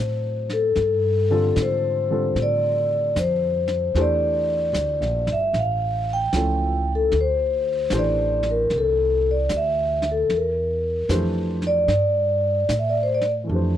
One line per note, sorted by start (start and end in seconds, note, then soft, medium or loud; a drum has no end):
0.00 0.74 A2 medium
0.00 0.78 F#3 medium
0.00 0.78 C4 soft
0.00 0.79 D4 soft
0.00 0.79 D#4 soft
0.00 0.78 A4 medium
0.00 0.58 C5 medium
0.49 1.61 A4 medium
0.49 snare soft
0.76 1.54 G2 medium
0.76 brush sweep soft
0.76 snare soft
1.30 1.54 D3 medium
1.30 1.54 G3 soft
1.30 1.54 C4 soft
1.30 1.55 F4 soft
1.30 1.55 A4 medium
1.56 2.33 G#2 medium
1.56 snare soft
1.56 hi-hat pedal soft
1.62 2.41 C5 medium
2.10 3.11 D3 soft
2.10 3.10 G3 soft
2.10 3.11 C4 soft
2.10 3.11 F4 soft
2.10 3.11 A4 soft
2.35 3.12 A2 medium
2.35 brush sweep soft
2.35 snare soft
2.42 3.14 D5 medium
3.16 3.92 F2 medium
3.16 3.99 C5 medium
3.16 snare soft
3.16 hi-hat pedal soft
3.68 snare soft
3.94 4.72 E2 medium
3.94 4.42 E3 medium
3.94 4.43 A3 medium
3.94 4.43 D4 soft
3.94 4.43 G4 medium
3.94 4.43 C5 medium
3.94 brush sweep soft
3.94 snare soft
4.01 5.34 D5 medium
4.73 5.00 D2 medium
4.73 snare soft
4.73 hi-hat pedal soft
5.00 5.26 A#1 soft
5.00 snare soft
5.27 5.52 G1 medium
5.27 snare soft
5.32 5.57 E5 medium
5.53 6.30 A1 medium
5.53 brush sweep soft
5.53 snare soft
5.59 6.10 F5 medium
6.13 6.91 G5 medium
6.33 7.10 C#2 medium
6.33 7.13 F3 soft
6.33 7.13 A3 soft
6.33 7.13 C#4 soft
6.33 7.13 E4 soft
6.33 7.14 A4 soft
6.33 snare soft
6.33 hi-hat pedal soft
6.95 7.16 A4 medium
7.12 7.89 D2 medium
7.12 brush sweep soft
7.12 snare soft
7.21 7.98 C5 medium
7.90 8.68 A1 medium
7.90 8.39 E3 medium
7.90 8.39 A3 soft
7.90 8.39 D4 soft
7.90 8.39 G4 soft
7.90 8.40 C5 medium
7.90 snare soft
7.90 hi-hat pedal soft
7.98 8.49 D5 medium
8.43 snare soft
8.51 8.75 A#4 medium
8.70 9.48 C2 medium
8.70 brush sweep soft
8.70 snare soft
8.78 9.28 A4 medium
9.31 9.55 D5 medium
9.49 10.27 D2 medium
9.49 snare soft
9.49 hi-hat pedal soft
9.57 10.07 E5 medium
10.02 snare soft
10.12 10.35 A4 medium
10.29 11.07 E2 medium
10.29 brush sweep soft
10.29 snare soft
10.36 11.09 A#4 medium
11.09 11.86 F2 medium
11.09 11.57 E3 soft
11.09 11.57 A3 medium
11.09 11.57 D4 soft
11.09 11.57 G4 soft
11.09 11.57 C5 medium
11.09 snare soft
11.09 hi-hat pedal soft
11.62 snare soft
11.67 12.72 D5 medium
11.88 12.66 G2 medium
11.88 brush sweep soft
11.88 snare soft
12.69 13.46 A2 medium
12.69 snare soft
12.69 hi-hat pedal soft
12.79 12.88 E5 medium
12.89 12.99 D5 medium
13.03 13.12 C5 medium
13.15 13.24 D5 medium
13.21 snare soft
13.44 13.77 E3 soft
13.44 13.77 A3 soft
13.49 13.77 F2 medium
13.49 13.77 D4 soft
13.49 13.77 G4 soft
13.49 brush sweep soft
13.55 13.77 C5 soft